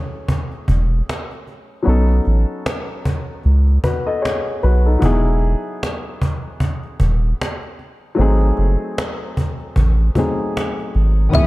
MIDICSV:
0, 0, Header, 1, 6, 480
1, 0, Start_track
1, 0, Tempo, 789474
1, 1131, Time_signature, 4, 2, 24, 8
1, 6973, End_track
2, 0, Start_track
2, 0, Title_t, "String section"
2, 0, Program_c, 0, 48
2, 6894, Note_on_c, 0, 76, 70
2, 6895, Note_on_c, 0, 83, 72
2, 6896, Note_on_c, 0, 73, 76
2, 6896, Note_on_c, 0, 87, 86
2, 6973, Note_off_c, 0, 73, 0
2, 6973, Note_off_c, 0, 76, 0
2, 6973, Note_off_c, 0, 83, 0
2, 6973, Note_off_c, 0, 87, 0
2, 6973, End_track
3, 0, Start_track
3, 0, Title_t, "Kalimba"
3, 0, Program_c, 1, 108
3, 6900, Note_on_c, 1, 76, 116
3, 6973, Note_off_c, 1, 76, 0
3, 6973, End_track
4, 0, Start_track
4, 0, Title_t, "Upright piano"
4, 0, Program_c, 2, 0
4, 0, Control_c, 2, 64, 127
4, 0, Note_on_c, 2, 54, 65
4, 0, Note_on_c, 2, 57, 69
4, 0, Note_on_c, 2, 61, 74
4, 0, Note_on_c, 2, 64, 65
4, 0, Note_on_c, 2, 68, 81
4, 1100, Note_off_c, 2, 54, 0
4, 1109, Note_on_c, 2, 54, 71
4, 1111, Note_off_c, 2, 57, 0
4, 1116, Note_off_c, 2, 61, 0
4, 1118, Note_on_c, 2, 59, 61
4, 1121, Note_off_c, 2, 64, 0
4, 1126, Note_on_c, 2, 61, 64
4, 1135, Note_on_c, 2, 63, 64
4, 1138, Control_c, 2, 64, 0
4, 1145, Note_off_c, 2, 68, 0
4, 1147, Note_on_c, 2, 69, 86
4, 1241, Control_c, 2, 64, 127
4, 2310, Note_off_c, 2, 63, 0
4, 2316, Note_off_c, 2, 69, 0
4, 2334, Note_on_c, 2, 71, 63
4, 2339, Note_on_c, 2, 66, 48
4, 2460, Note_off_c, 2, 71, 0
4, 2463, Note_off_c, 2, 66, 0
4, 2472, Note_on_c, 2, 75, 61
4, 2474, Note_on_c, 2, 69, 58
4, 2565, Note_on_c, 2, 73, 62
4, 2566, Note_on_c, 2, 68, 49
4, 2569, Note_off_c, 2, 75, 0
4, 2570, Note_off_c, 2, 69, 0
4, 2796, Note_off_c, 2, 73, 0
4, 2797, Note_off_c, 2, 68, 0
4, 2816, Note_on_c, 2, 71, 68
4, 2821, Note_on_c, 2, 66, 55
4, 2941, Note_off_c, 2, 71, 0
4, 2944, Note_off_c, 2, 66, 0
4, 2956, Note_on_c, 2, 69, 56
4, 2960, Note_on_c, 2, 63, 49
4, 3016, Note_off_c, 2, 54, 0
4, 3021, Note_off_c, 2, 59, 0
4, 3024, Note_off_c, 2, 61, 0
4, 3033, Note_on_c, 2, 54, 61
4, 3043, Note_on_c, 2, 59, 68
4, 3044, Note_off_c, 2, 63, 0
4, 3053, Note_on_c, 2, 63, 64
4, 3060, Control_c, 2, 64, 0
4, 3062, Note_on_c, 2, 64, 78
4, 3071, Note_on_c, 2, 68, 85
4, 3179, Note_off_c, 2, 69, 0
4, 3179, Control_c, 2, 64, 127
4, 4938, Note_off_c, 2, 54, 0
4, 4943, Note_off_c, 2, 59, 0
4, 4948, Note_off_c, 2, 63, 0
4, 4952, Note_off_c, 2, 64, 0
4, 4954, Note_on_c, 2, 54, 75
4, 4957, Note_off_c, 2, 68, 0
4, 4964, Note_on_c, 2, 57, 69
4, 4975, Note_on_c, 2, 60, 72
4, 4980, Control_c, 2, 64, 0
4, 4985, Note_on_c, 2, 63, 67
4, 4993, Note_on_c, 2, 68, 85
4, 5074, Control_c, 2, 64, 127
4, 6139, Note_off_c, 2, 54, 0
4, 6144, Note_off_c, 2, 57, 0
4, 6149, Note_off_c, 2, 60, 0
4, 6154, Note_off_c, 2, 63, 0
4, 6158, Note_off_c, 2, 68, 0
4, 6172, Note_on_c, 2, 54, 59
4, 6177, Note_on_c, 2, 57, 53
4, 6183, Note_on_c, 2, 60, 53
4, 6188, Note_on_c, 2, 63, 52
4, 6193, Note_on_c, 2, 68, 74
4, 6865, Note_on_c, 2, 51, 55
4, 6876, Note_on_c, 2, 59, 58
4, 6885, Note_off_c, 2, 51, 0
4, 6885, Note_on_c, 2, 61, 63
4, 6892, Note_off_c, 2, 54, 0
4, 6894, Note_off_c, 2, 57, 0
4, 6895, Note_off_c, 2, 68, 0
4, 6895, Note_on_c, 2, 51, 61
4, 6897, Note_off_c, 2, 60, 0
4, 6899, Control_c, 2, 64, 0
4, 6900, Note_off_c, 2, 63, 0
4, 6904, Note_on_c, 2, 68, 65
4, 6906, Note_on_c, 2, 52, 71
4, 6973, Note_off_c, 2, 51, 0
4, 6973, Note_off_c, 2, 52, 0
4, 6973, Note_off_c, 2, 59, 0
4, 6973, Note_off_c, 2, 61, 0
4, 6973, Note_off_c, 2, 68, 0
4, 6973, End_track
5, 0, Start_track
5, 0, Title_t, "Sub bass"
5, 0, Program_c, 3, 38
5, 416, Note_on_c, 3, 28, 83
5, 620, Note_off_c, 3, 28, 0
5, 1137, Note_on_c, 3, 35, 105
5, 1341, Note_off_c, 3, 35, 0
5, 1379, Note_on_c, 3, 33, 90
5, 1491, Note_off_c, 3, 33, 0
5, 2100, Note_on_c, 3, 37, 99
5, 2302, Note_off_c, 3, 37, 0
5, 2820, Note_on_c, 3, 35, 82
5, 3022, Note_off_c, 3, 35, 0
5, 3056, Note_on_c, 3, 28, 110
5, 3375, Note_off_c, 3, 28, 0
5, 4258, Note_on_c, 3, 27, 87
5, 4461, Note_off_c, 3, 27, 0
5, 4979, Note_on_c, 3, 32, 118
5, 5182, Note_off_c, 3, 32, 0
5, 5218, Note_on_c, 3, 30, 79
5, 5330, Note_off_c, 3, 30, 0
5, 5937, Note_on_c, 3, 33, 87
5, 6141, Note_off_c, 3, 33, 0
5, 6659, Note_on_c, 3, 32, 85
5, 6862, Note_off_c, 3, 32, 0
5, 6895, Note_on_c, 3, 37, 112
5, 6973, Note_off_c, 3, 37, 0
5, 6973, End_track
6, 0, Start_track
6, 0, Title_t, "Cajon"
6, 173, Note_on_c, 9, 36, 95
6, 234, Note_off_c, 9, 36, 0
6, 313, Note_on_c, 9, 38, 27
6, 374, Note_off_c, 9, 38, 0
6, 413, Note_on_c, 9, 36, 78
6, 474, Note_off_c, 9, 36, 0
6, 665, Note_on_c, 9, 38, 103
6, 726, Note_off_c, 9, 38, 0
6, 797, Note_on_c, 9, 38, 26
6, 858, Note_off_c, 9, 38, 0
6, 896, Note_on_c, 9, 38, 35
6, 957, Note_off_c, 9, 38, 0
6, 1136, Note_on_c, 9, 38, 32
6, 1197, Note_off_c, 9, 38, 0
6, 1269, Note_on_c, 9, 38, 27
6, 1329, Note_off_c, 9, 38, 0
6, 1367, Note_on_c, 9, 38, 35
6, 1428, Note_off_c, 9, 38, 0
6, 1618, Note_on_c, 9, 38, 106
6, 1679, Note_off_c, 9, 38, 0
6, 1751, Note_on_c, 9, 38, 24
6, 1812, Note_off_c, 9, 38, 0
6, 1857, Note_on_c, 9, 36, 86
6, 1918, Note_off_c, 9, 36, 0
6, 2088, Note_on_c, 9, 38, 33
6, 2149, Note_off_c, 9, 38, 0
6, 2233, Note_on_c, 9, 38, 25
6, 2294, Note_off_c, 9, 38, 0
6, 2333, Note_on_c, 9, 36, 85
6, 2393, Note_off_c, 9, 36, 0
6, 2586, Note_on_c, 9, 38, 107
6, 2647, Note_off_c, 9, 38, 0
6, 2720, Note_on_c, 9, 38, 30
6, 2780, Note_off_c, 9, 38, 0
6, 2814, Note_on_c, 9, 38, 33
6, 2875, Note_off_c, 9, 38, 0
6, 3052, Note_on_c, 9, 36, 96
6, 3113, Note_off_c, 9, 36, 0
6, 3190, Note_on_c, 9, 38, 27
6, 3251, Note_off_c, 9, 38, 0
6, 3293, Note_on_c, 9, 38, 34
6, 3354, Note_off_c, 9, 38, 0
6, 3545, Note_on_c, 9, 38, 122
6, 3606, Note_off_c, 9, 38, 0
6, 3676, Note_on_c, 9, 38, 21
6, 3737, Note_off_c, 9, 38, 0
6, 3779, Note_on_c, 9, 36, 93
6, 3840, Note_off_c, 9, 36, 0
6, 4015, Note_on_c, 9, 36, 88
6, 4075, Note_off_c, 9, 36, 0
6, 4155, Note_on_c, 9, 38, 26
6, 4216, Note_off_c, 9, 38, 0
6, 4254, Note_on_c, 9, 36, 82
6, 4315, Note_off_c, 9, 36, 0
6, 4508, Note_on_c, 9, 38, 118
6, 4569, Note_off_c, 9, 38, 0
6, 4639, Note_on_c, 9, 38, 28
6, 4700, Note_off_c, 9, 38, 0
6, 4737, Note_on_c, 9, 38, 36
6, 4798, Note_off_c, 9, 38, 0
6, 4978, Note_on_c, 9, 38, 35
6, 5039, Note_off_c, 9, 38, 0
6, 5111, Note_on_c, 9, 38, 25
6, 5172, Note_off_c, 9, 38, 0
6, 5211, Note_on_c, 9, 38, 34
6, 5272, Note_off_c, 9, 38, 0
6, 5462, Note_on_c, 9, 38, 113
6, 5522, Note_off_c, 9, 38, 0
6, 5593, Note_on_c, 9, 38, 22
6, 5654, Note_off_c, 9, 38, 0
6, 5698, Note_on_c, 9, 36, 87
6, 5759, Note_off_c, 9, 36, 0
6, 5829, Note_on_c, 9, 38, 23
6, 5890, Note_off_c, 9, 38, 0
6, 5933, Note_on_c, 9, 36, 86
6, 5994, Note_off_c, 9, 36, 0
6, 6074, Note_on_c, 9, 38, 23
6, 6135, Note_off_c, 9, 38, 0
6, 6173, Note_on_c, 9, 36, 86
6, 6234, Note_off_c, 9, 36, 0
6, 6313, Note_on_c, 9, 38, 23
6, 6374, Note_off_c, 9, 38, 0
6, 6426, Note_on_c, 9, 38, 123
6, 6487, Note_off_c, 9, 38, 0
6, 6558, Note_on_c, 9, 38, 29
6, 6619, Note_off_c, 9, 38, 0
6, 6655, Note_on_c, 9, 38, 34
6, 6716, Note_off_c, 9, 38, 0
6, 6891, Note_on_c, 9, 36, 103
6, 6952, Note_off_c, 9, 36, 0
6, 6973, End_track
0, 0, End_of_file